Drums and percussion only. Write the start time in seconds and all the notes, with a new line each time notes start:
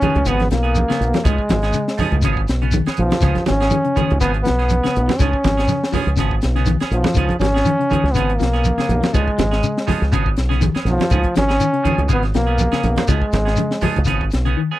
0.01 kick, closed hi-hat, high conga, low conga, shekere
0.15 closed hi-hat, low conga
0.26 kick, closed hi-hat, shekere
0.40 snare, closed hi-hat, high conga
0.51 snare, closed hi-hat, shekere
0.64 closed hi-hat
0.75 closed hi-hat, high conga, shekere
0.90 snare, closed hi-hat
1.01 closed hi-hat, shekere
1.14 snare, closed hi-hat, high conga
1.25 kick, closed hi-hat, low conga, shekere
1.38 kick
1.49 kick, snare, closed hi-hat, high conga, shekere
1.62 snare, closed hi-hat
1.73 closed hi-hat, shekere
1.88 snare
1.98 kick, open hi-hat, high conga, low conga, shekere
2.12 closed hi-hat, low conga
2.22 kick, closed hi-hat, shekere
2.37 kick
2.48 snare, closed hi-hat, shekere
2.62 closed hi-hat
2.71 closed hi-hat, high conga, shekere
2.86 snare, closed hi-hat
2.96 closed hi-hat, high conga, shekere
3.11 snare, closed hi-hat, high conga
3.21 kick, snare, closed hi-hat, low conga, shekere
3.35 kick, snare, closed hi-hat, high conga
3.46 snare, closed hi-hat, high conga, shekere
3.60 snare, closed hi-hat
3.70 closed hi-hat, high conga, shekere
3.85 closed hi-hat
3.96 kick, closed hi-hat, high conga, low conga, shekere
4.10 closed hi-hat, low conga
4.21 kick, closed hi-hat, shekere
4.34 closed hi-hat
4.45 snare, closed hi-hat, shekere
4.59 snare, closed hi-hat
4.69 closed hi-hat, high conga, shekere
4.84 snare, closed hi-hat
4.96 closed hi-hat, shekere
5.09 snare, closed hi-hat, high conga
5.19 kick, snare, closed hi-hat, low conga, shekere
5.33 kick
5.44 kick, snare, closed hi-hat, high conga, shekere
5.58 snare, closed hi-hat
5.68 snare, closed hi-hat, high conga, shekere
5.84 snare
5.92 kick, open hi-hat, high conga, low conga, shekere
6.08 closed hi-hat
6.16 kick, snare, closed hi-hat, shekere
6.31 kick
6.42 snare, closed hi-hat, shekere
6.56 snare, closed hi-hat
6.65 closed hi-hat, high conga, shekere
6.80 snare, closed hi-hat
6.91 closed hi-hat, shekere
7.04 snare, closed hi-hat, high conga
7.14 kick, closed hi-hat, low conga, shekere
7.29 kick, closed hi-hat, high conga
7.40 snare, closed hi-hat, high conga, shekere
7.55 snare, closed hi-hat
7.65 closed hi-hat, high conga, shekere
7.81 closed hi-hat
7.90 kick, closed hi-hat, high conga, low conga, shekere
8.06 snare, closed hi-hat
8.14 kick, closed hi-hat, shekere
8.30 closed hi-hat
8.39 snare, closed hi-hat, shekere
8.54 snare, closed hi-hat
8.64 closed hi-hat, high conga, shekere
8.78 snare, closed hi-hat
8.89 closed hi-hat, high conga, shekere
9.03 snare, closed hi-hat, high conga
9.14 kick, closed hi-hat, low conga, shekere
9.28 kick
9.39 kick, snare, closed hi-hat, high conga, shekere
9.52 snare, closed hi-hat
9.63 closed hi-hat, shekere
9.77 snare
9.87 kick, open hi-hat, high conga, low conga, shekere
10.02 snare, closed hi-hat
10.12 kick, closed hi-hat, shekere
10.26 kick
10.37 snare, closed hi-hat, shekere
10.51 snare, closed hi-hat
10.62 closed hi-hat, high conga, shekere
10.75 snare, closed hi-hat
10.86 snare, closed hi-hat, high conga, shekere
11.00 snare, closed hi-hat, high conga
11.10 kick, closed hi-hat, low conga, shekere
11.23 kick, closed hi-hat
11.35 snare, closed hi-hat, high conga, shekere
11.49 snare, closed hi-hat
11.60 closed hi-hat, shekere
11.74 closed hi-hat
11.85 kick, closed hi-hat, high conga, low conga, shekere
11.98 closed hi-hat, low conga
12.09 kick, closed hi-hat, shekere
12.23 snare, closed hi-hat
12.34 snare, closed hi-hat, shekere
12.47 closed hi-hat
12.58 closed hi-hat, high conga, shekere
12.72 snare, closed hi-hat
12.83 closed hi-hat, high conga, shekere
12.96 snare, closed hi-hat, high conga
13.07 kick, closed hi-hat, low conga, shekere
13.22 kick
13.32 kick, snare, closed hi-hat, high conga, shekere
13.46 snare, closed hi-hat
13.56 closed hi-hat, high conga, shekere
13.71 snare
13.81 kick, open hi-hat, high conga, low conga, shekere
13.96 closed hi-hat, low conga
14.05 kick, closed hi-hat, shekere
14.21 kick
14.31 snare, closed hi-hat, shekere
14.46 closed hi-hat